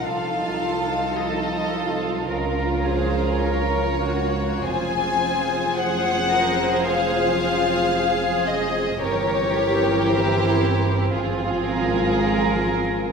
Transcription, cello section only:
0.04 F4
1.18 A4
2.30 A#4
2.87 G#4
3.44 A#4
4.04 F#4
4.66 F4
5.76 G#4
6.30 A#4
6.85 G#4
7.40 F4
7.95 G#4
9.02 A#4
9.54 G4
10.07 E4
11.14 F4
11.67 A#4

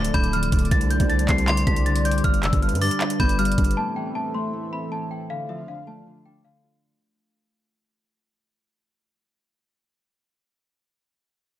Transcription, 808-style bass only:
Already playing: D1
0.14 D1
0.52 D1
0.71 C2
1.00 C2
1.29 C2
1.67 C2
2.24 G1
2.43 F1
2.53 G1
2.72 G2
3.20 G1
3.58 G1

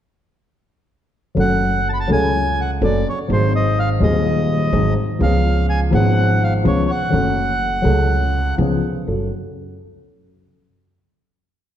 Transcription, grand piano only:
1.36 F#2 F#3 A3 C#4 A4
2.08 C#2 C#3 F#3 A3 C#4
2.12 A4
2.82 F#2 F#3 A3 C#4 A4
3.28 G#1 G#2 F#3 C4 D#4
3.32 G#4
4.00 D#1 D#2 F#3 C4 D#4 G#4
4.73 G#1 G#2 F#3 C4 D#4 G#4
5.19 C#2 C#3 F3 B3 C#4 G#4
5.91 G#1 G#2 F3 B3 C#4 G#4
6.64 C#2 C#3 F3 B3 C#4 G#4
7.11 F#2 F#3 A3 C#4 A4
7.82 C#2 C#3 F#3 A3 C#4 A4
8.58 C#2 C#3 F3 B3 C#4 G#4
9.08 F#2 C#4 F#4 A4

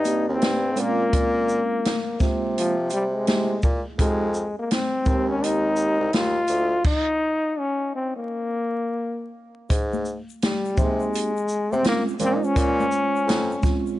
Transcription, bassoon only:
Already playing: G2
0.28 D#2
0.41 G2
0.78 A#2
1.13 A#2
2.20 C3
3.28 C3
3.63 A#2
3.99 F2
5.06 D#2
6.00 C2
6.13 D#2
6.49 D2
9.70 G#2
10.78 C3
11.72 C3
12.20 A#2
12.56 A#2
13.27 F2

